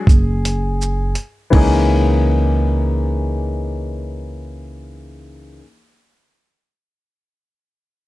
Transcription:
Already playing: upright piano G#4
0.07 upright bass F#1, kick, closed hi-hat, shaker
0.45 closed hi-hat
0.82 shaker
1.15 closed hi-hat
1.50 upright bass C#2, upright piano E3 A#3 C#4, kick, crash
1.55 upright piano D#4 G#4

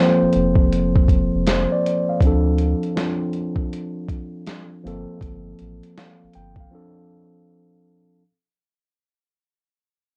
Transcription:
Already playing: tine electric piano F3 A#3 A4
0.00 tine electric piano C4 C5
0.22 sub bass F1
0.33 sub bass F1, closed hi-hat
0.55 kick
0.72 closed hi-hat
0.96 kick
1.08 kick, closed hi-hat
1.35 sub bass F1
1.47 tine electric piano C5, snare, closed hi-hat
1.72 tine electric piano D5
1.86 closed hi-hat
2.09 tine electric piano F5
2.21 sub bass D2, tine electric piano F3 C4, kick, closed hi-hat
2.25 tine electric piano D4 A4
2.58 closed hi-hat
2.83 closed hi-hat
2.96 tine electric piano F3 C4 D4 F4, snare, closed hi-hat
3.33 closed hi-hat
3.56 kick
3.73 closed hi-hat
4.09 kick, closed hi-hat
4.47 snare, closed hi-hat
4.83 sub bass G1, tine electric piano F3 A#3 C4, closed hi-hat
4.88 tine electric piano A4
5.21 sub bass G1, kick, closed hi-hat
5.59 sub bass A1, closed hi-hat
5.83 closed hi-hat
5.98 tine electric piano F5, snare, closed hi-hat
6.23 sub bass G1
6.34 sub bass G1, tine electric piano G5, closed hi-hat
6.56 kick
6.60 tine electric piano F5
6.71 tine electric piano F3 C4 D4
6.75 tine electric piano A4

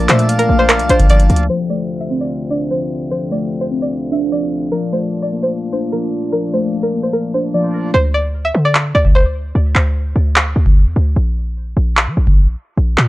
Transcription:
Already playing: harmonium A#2 D5 A5, synth keys F3 A3 A#3 D4
0.09 808-style bass A#2, synth keys A3, synth pluck C5, soft synth lead E5, clap, closed hi-hat
0.19 closed hi-hat
0.29 soft synth lead F5, closed hi-hat
0.39 synth pluck A#4, closed hi-hat
0.49 808-style bass A#1, synth keys A#3
0.59 synth pluck C5
0.69 synth pluck A#4, clap, closed hi-hat
0.79 808-style bass C2, closed hi-hat
0.89 808-style bass A#1, synth keys D4, synth pluck C5, closed hi-hat
1.00 kick, closed hi-hat
1.10 synth keys F3, synth pluck D5, kick, closed hi-hat
1.20 closed hi-hat
1.30 808-style bass D2, closed hi-hat
1.36 closed hi-hat
1.43 closed hi-hat
1.50 harmonium D2 C3 F4, synth keys F3, synth pluck C5
1.57 closed hi-hat
1.63 closed hi-hat
1.70 synth keys A3, synth pluck D5
2.01 synth pluck E5
2.10 synth keys C4
2.21 synth pluck D5
2.50 synth keys D4, synth pluck D5
2.71 synth keys F3, synth pluck C5
3.11 synth keys F3, synth pluck C5
3.31 synth keys A3, synth pluck D5
3.61 synth pluck C5
3.71 synth keys C4
3.82 synth pluck D5
4.12 synth keys D4, synth pluck E5
4.32 synth keys F3, synth pluck D5
4.72 harmonium A#2 F3 D4, synth keys F3, synth pluck A#4
4.92 synth keys A3, synth pluck C5
5.22 synth pluck D5
5.32 synth keys A#3
5.43 synth pluck C5
5.73 synth keys D4, synth pluck C5
5.93 synth keys F3, synth pluck A#4
6.33 synth keys F3, synth pluck A#4
6.54 synth keys A3, synth pluck C5
6.83 synth pluck A#4
6.94 synth keys A#3
7.03 synth pluck C5
7.13 synth pluck A#4
7.34 synth keys D4, synth pluck C5
7.54 synth keys F3, synth pluck D5
7.94 808-style bass D2, synth pluck C5
8.14 synth pluck D5
8.45 synth pluck E5
8.54 808-style bass D3
8.65 synth pluck D5
8.75 clap
8.95 808-style bass D2, synth pluck D5
9.05 kick
9.15 synth pluck C5
9.55 808-style bass D2
9.75 808-style bass D2, clap
10.16 808-style bass D2
10.36 clap
10.56 808-style bass D2
10.66 kick
10.76 808-style bass E2
10.96 808-style bass D2
11.16 808-style bass A#1
11.77 808-style bass A#1
11.97 clap
12.07 808-style bass F3
12.17 808-style bass A#1
12.27 kick
12.77 808-style bass A#1
12.97 808-style bass A#2, clap

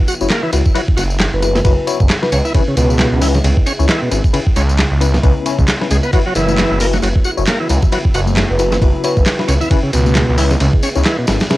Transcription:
Already playing: analog synth pad C#3 F#3 B3 E4
0.08 tonewheel organ F#4, tambourine
0.21 detuned saw bass F#1, tine electric piano E4 F#4 C#5, tambourine
0.30 tonewheel organ A#3, snare, clap, ride, tambourine
0.43 tonewheel organ E3
0.53 detuned saw bass C#2, tine electric piano E4 F#4 B4, ride, tambourine
0.66 kick, tambourine
0.75 tonewheel organ F#3, tine electric piano E4 F#4 B4, ride, tambourine
0.88 kick
0.97 detuned saw bass F#1, tonewheel organ F#4, ride, tambourine
1.10 tambourine
1.20 snare, clap, ride, tambourine
1.33 detuned saw bass F#1, marimba B4
1.42 tine electric piano E4 F#4 B4, marimba B4, ride, tambourine
1.55 tonewheel organ E3, snare, tambourine
1.65 detuned saw bass F#1, tine electric piano E4 F#4 B4, kick, ride, tambourine
1.87 tine electric piano E4 F#4 C#5, ride, tambourine
2.00 detuned saw bass F#1, kick, tambourine
2.10 snare, clap, ride, tambourine
2.22 tine electric piano E4 F#4 B4, marimba B4, snare
2.32 detuned saw bass C#2, tonewheel organ C#4, marimba B4, ride, tambourine
2.45 tonewheel organ E4, tambourine
2.54 tonewheel organ C#3, analog synth pad C#3 G#3 B3 E4, tine electric piano C#4 E4 B4, kick, ride, tambourine
2.68 tonewheel organ C#3
2.77 detuned saw bass C#2, tonewheel organ B2, ride, tambourine
2.90 tambourine
2.99 snare, clap, ride, tambourine
3.12 detuned saw bass C#2
3.21 tonewheel organ E3, tine electric piano C#4 E4 B4, open hi-hat, tambourine
3.34 tonewheel organ C#3, snare, tambourine
3.44 detuned saw bass C#2, tonewheel organ C#3, ride, tambourine
3.57 kick
3.66 tonewheel organ C#4, ride, tambourine
3.79 detuned saw bass C#2, tine electric piano C#4 E4 C#5, tambourine
3.89 tonewheel organ E3, snare, clap, ride, tambourine
4.02 tonewheel organ B2
4.11 detuned saw bass G#1, tine electric piano C#4 E4 B4, ride, tambourine
4.24 kick, tambourine
4.33 tonewheel organ C#3, tine electric piano C#4 E4 B4, ride, tambourine
4.47 kick
4.56 detuned saw bass C#2, tonewheel organ C#4, ride, tambourine
4.69 tambourine
4.79 snare, clap, ride
4.91 detuned saw bass C#2
5.01 tine electric piano C#4 E4 B4, ride, tambourine
5.14 tonewheel organ B2, snare, tambourine
5.23 detuned saw bass C#2, tine electric piano C#4 E4 B4, kick, ride, tambourine
5.46 tine electric piano C#4 E4 C#5, ride, tambourine
5.59 detuned saw bass C#2, kick, tambourine
5.68 snare, clap, ride, tambourine
5.81 tine electric piano C#4 E4 B4, snare
5.91 detuned saw bass C#2, tonewheel organ G#3, ride, tambourine
6.03 tonewheel organ B3, tambourine
6.13 analog synth pad F#3, tonewheel organ F#3, tine electric piano E4 F#4 B4, kick, ride, tambourine
6.26 tonewheel organ F#3
6.35 detuned saw bass F#1, tonewheel organ E3, ride, tambourine
6.48 tambourine, high conga
6.58 snare, clap, ride
6.71 detuned saw bass F#1
6.80 tonewheel organ A#3, tine electric piano E4 F#4 B4, open hi-hat, tambourine
6.93 tonewheel organ F#3, snare, tambourine, high conga
7.02 detuned saw bass F#1, tonewheel organ F#3, ride, tambourine
7.16 kick
7.24 tonewheel organ F#4, tambourine
7.37 detuned saw bass F#1, tine electric piano E4 F#4 C#5, tambourine
7.47 tonewheel organ A#3, snare, clap, ride, tambourine
7.60 tonewheel organ E3
7.69 detuned saw bass C#2, tine electric piano E4 F#4 B4, ride, tambourine
7.82 kick, tambourine, low conga
7.92 tonewheel organ F#3, tine electric piano E4 F#4 B4, ride, tambourine
8.05 kick
8.14 detuned saw bass F#1, tonewheel organ F#4, ride, tambourine
8.27 tambourine, high conga
8.36 snare, clap, ride, tambourine
8.50 detuned saw bass F#1, marimba B4
8.59 tine electric piano E4 F#4 B4, marimba B4, ride, tambourine
8.71 tonewheel organ E3, snare, tambourine, high conga
8.81 detuned saw bass F#1, tine electric piano E4 F#4 B4, kick, ride, tambourine
9.04 tine electric piano E4 F#4 C#5, marimba B4, ride, tambourine
9.17 detuned saw bass F#1, kick, tambourine
9.26 snare, clap, ride, tambourine
9.39 tine electric piano E4 F#4 B4, snare
9.48 detuned saw bass C#2, tonewheel organ C#4, ride, tambourine
9.61 tonewheel organ E4, tambourine, low conga
9.70 tonewheel organ C#3, analog synth pad G#3, tine electric piano C#4 E4 B4, kick, ride, tambourine
9.83 tonewheel organ C#3
9.93 detuned saw bass C#2, tonewheel organ B2, ride, tambourine
10.06 tambourine, high conga
10.15 snare, clap, ride, tambourine
10.29 detuned saw bass C#2
10.38 tonewheel organ E3, tine electric piano C#4 E4 B4, open hi-hat, tambourine
10.51 tonewheel organ C#3, snare, tambourine, high conga
10.60 detuned saw bass C#2, tonewheel organ C#3, ride, tambourine
10.73 kick
10.83 tonewheel organ C#4, ride, tambourine
10.95 detuned saw bass C#2, tine electric piano C#4 E4 C#5, tambourine
11.05 tonewheel organ E3, snare, clap, ride
11.19 tonewheel organ B2
11.27 detuned saw bass G#1, tine electric piano C#4 E4 B4, snare, ride, tambourine
11.40 snare, ride, tambourine, low conga
11.50 tonewheel organ C#3, tine electric piano C#4 E4 B4, snare, ride, tambourine

